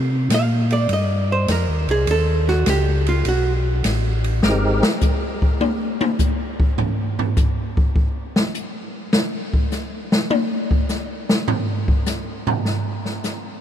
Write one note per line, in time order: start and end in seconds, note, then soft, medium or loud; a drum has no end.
0.00 0.29 C3 medium
0.30 0.87 A#2 medium
0.30 snare medium
0.30 hi-hat pedal medium
0.30 ride medium
0.34 0.72 F5 medium
0.70 0.90 D5 medium
0.70 ride soft
0.89 1.47 G2 medium
0.89 ride medium
0.93 1.31 D#5 medium
1.32 1.49 C5 medium
1.48 1.68 F2 medium
1.48 1.90 A#4 medium
1.48 snare medium
1.48 hi-hat pedal medium
1.48 ride medium
1.68 1.88 D#2 medium
1.87 2.06 C2 medium
1.87 2.08 G#4 medium
1.87 ride soft
2.07 2.65 D#2 medium
2.07 2.49 A4 medium
2.07 ride medium
2.48 2.66 F#4 medium
2.48 snare soft
2.66 3.24 C#2 medium
2.66 3.07 G4 medium
2.66 snare medium
2.66 hi-hat pedal medium
2.66 ride medium
3.06 3.26 F4 medium
3.06 ride soft
3.25 3.83 B1 medium
3.25 3.52 F#4 medium
3.25 ride medium
3.84 4.41 A1 medium
3.84 snare medium
3.84 hi-hat pedal medium
3.84 ride medium
4.24 ride soft
4.43 4.83 G#1 medium
4.43 4.83 G#3 medium
4.43 4.84 C4 medium
4.43 4.84 D#4 medium
4.43 4.84 G4 medium
4.43 4.84 A#4 medium
4.43 snare loud
4.83 snare loud
5.01 kick medium
5.01 hi-hat pedal medium
5.42 kick medium
5.61 high tom medium
6.01 high tom loud
6.19 kick medium
6.19 hi-hat pedal medium
6.60 kick medium
6.78 floor tom loud
7.19 floor tom medium
7.37 kick medium
7.37 hi-hat pedal medium
7.77 kick medium
7.96 kick medium
8.36 snare loud
8.54 hi-hat pedal medium
9.13 snare loud
9.53 kick medium
9.72 snare soft
9.72 hi-hat pedal medium
10.12 snare loud
10.30 high tom loud
10.71 kick medium
10.89 snare soft
10.89 hi-hat pedal medium
11.29 snare loud
11.48 floor tom loud
11.88 kick medium
12.06 snare soft
12.06 hi-hat pedal medium
12.47 floor tom loud
12.65 snare medium
13.05 snare soft
13.24 snare soft
13.24 hi-hat pedal medium